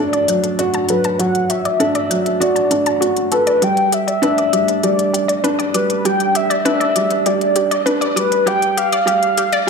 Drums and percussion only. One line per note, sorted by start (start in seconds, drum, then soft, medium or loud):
0.13 closed hi-hat soft
0.28 closed hi-hat medium
0.44 closed hi-hat soft
0.59 closed hi-hat soft
0.74 closed hi-hat soft
0.89 closed hi-hat medium
1.04 closed hi-hat soft
1.20 closed hi-hat soft
1.35 closed hi-hat soft
1.50 closed hi-hat medium
1.65 closed hi-hat soft
1.80 closed hi-hat soft
1.95 closed hi-hat soft
2.11 closed hi-hat medium
2.26 closed hi-hat soft
2.42 closed hi-hat soft
2.56 closed hi-hat soft
2.71 closed hi-hat medium
2.86 closed hi-hat soft
3.02 closed hi-hat soft
3.17 closed hi-hat soft
3.32 closed hi-hat medium
3.47 closed hi-hat soft
3.62 closed hi-hat soft
3.77 closed hi-hat soft
3.92 closed hi-hat medium
4.08 closed hi-hat soft
4.23 closed hi-hat soft
4.38 closed hi-hat soft
4.53 closed hi-hat medium
4.68 closed hi-hat soft
4.83 closed hi-hat soft
4.99 closed hi-hat soft
5.14 closed hi-hat medium
5.29 closed hi-hat soft
5.44 closed hi-hat soft
5.60 closed hi-hat soft
5.74 closed hi-hat medium
5.90 closed hi-hat soft
6.05 closed hi-hat soft
6.20 closed hi-hat soft
6.35 closed hi-hat medium
6.51 closed hi-hat soft
6.66 closed hi-hat soft
6.81 closed hi-hat soft
6.96 closed hi-hat medium
7.11 closed hi-hat soft
7.26 closed hi-hat soft
7.41 closed hi-hat soft
7.56 closed hi-hat medium
7.71 closed hi-hat soft
7.87 closed hi-hat soft
8.02 closed hi-hat soft
8.17 closed hi-hat medium
8.32 closed hi-hat soft
8.47 closed hi-hat soft
8.62 closed hi-hat soft
8.78 closed hi-hat medium
8.93 closed hi-hat soft
9.08 closed hi-hat soft
9.23 closed hi-hat soft
9.38 closed hi-hat medium
9.53 closed hi-hat soft